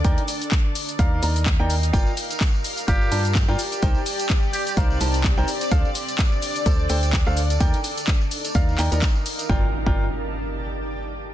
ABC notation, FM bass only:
X:1
M:4/4
L:1/16
Q:"Swing 16ths" 1/4=127
K:Gm
V:1 name="FM bass" clef=bass
E,, z6 z E,,2 E,,3 E,,3 | G,,, z6 z G,,,2 G,,3 G,, z2 | C,, z6 z C,,2 C,,3 C,, z2 | D,, z6 z D,,2 D,,3 D,,3 |
E,, z6 z E,,2 E,, E,, z4 | G,,, z2 G,,,2 z8 z3 |]